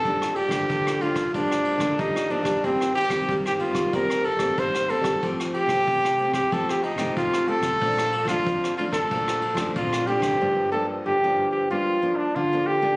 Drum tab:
RD |x-xxx-xxx-xxx-xx|x-xxx-xxx-xxx-xx|x-xxx-xxx-xxx-xx|x-xxx-xxx-xxx-xx|
SD |-r-r-r-r-r-r-r-r|-r-r-r-r-r-r-r-r|-r-r-r-r-r-r-r-r|-r-r-r-r-r-r-r-r|
BD |o--oo--oo--oo--o|o--oo--oo--oo--o|o--oo--oo--oo--o|o--oo--oo--oo--o|

RD |----------------|
SD |----------------|
BD |----------------|